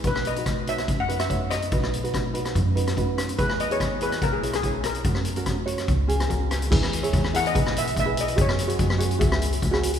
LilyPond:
<<
  \new Staff \with { instrumentName = "Steel pan" } { \time 4/4 \key b \major \tempo 4 = 144 b'8 dis''4 e''8. fis''8 e''8. dis''8~ | dis''4. r2 r8 | b'8 dis''16 cis''8. b'8 ais'16 gis'8 gis'8. ais'8~ | ais'2.~ ais'8 r8 |
r4. fis''16 dis''8. e''8 e''8 dis''8 | cis''2 r2 | }
  \new Staff \with { instrumentName = "Ukulele" } { \time 4/4 \key b \major <dis' fis' b'>8 r16 <dis' fis' b'>8 r16 <dis' fis' cis''>8 r8 <dis' fis' b'>16 r16 <dis' fis' cis''>8 r8 | <dis' fis' b'>8 r16 <dis' fis' b'>8 r16 <dis' fis' b'>8 r8 <dis' fis' b'>16 r16 <dis' fis' b'>8 r8 | <e' gis' b'>8 r16 <e' gis' b'>8 r16 <e' gis' b'>8 r8 <e' gis' cis''>16 r16 <e' gis' cis''>8 r8 | <cis' fis' ais'>8 r16 <cis' fis' ais'>8 r16 <cis' fis' cis''>8 r8 <cis' fis' gis'>16 r16 <cis' fis' ais'>8 r8 |
<e' gis' b'>8 r16 <e' gis' cis''>8 r16 <e' gis' ais'>16 r16 <e' gis' b'>8. r8 <e' gis' b'>8 r16 | <fis' gis' cis''>8 r16 <fis' gis' cis''>8 r16 <fis' gis' cis''>16 r16 <fis' gis' e''>8. r8 <fis' gis' cis''>8 r16 | }
  \new Staff \with { instrumentName = "Upright bass" } { \clef bass \time 4/4 \key b \major b,,2 fis,2 | b,,2 fis,2 | e,2 b,,2 | fis,2 cis,2 |
e,4 e,4 b,,2 | fis,4 fis,4 cis,2 | }
  \new DrumStaff \with { instrumentName = "Drums" } \drummode { \time 4/4 <hh bd>16 ss16 hh16 hh16 <hh bd ss>8 hh16 <hh ss>16 <hh bd>8 hh16 <hh ss>16 <hh bd>8 <hh ss>16 hh16 | <hh bd>16 ss16 hh16 hh16 <hh bd ss>8 hh16 <hh ss>16 <hh bd>8 hh16 <hh ss>16 <hh bd>8 <hh ss>16 hh16 | <hh bd>16 ss16 hh16 hh16 <hh bd ss>8 hh16 <hh ss>16 <hh bd>8 hh16 <hh ss>16 <hh bd>8 <hh ss>16 hh16 | <hh bd>16 ss16 hh16 hh16 <hh bd ss>8 hh16 <hh ss>16 <hh bd>8 hh16 <hh ss>16 <hh bd>8 <hh ss>16 hh16 |
<cymc bd>16 ss16 hh16 hh16 <hh bd>16 ss16 hh16 hh16 <hh bd>16 ss16 hh16 hh16 <hh bd>8 hh16 hh16 | <hh bd>16 ss16 hh16 hh16 <hh bd>16 ss16 hh16 hh16 <hh bd>16 ss16 hh16 hh16 <hh bd>16 ss16 hh16 hh16 | }
>>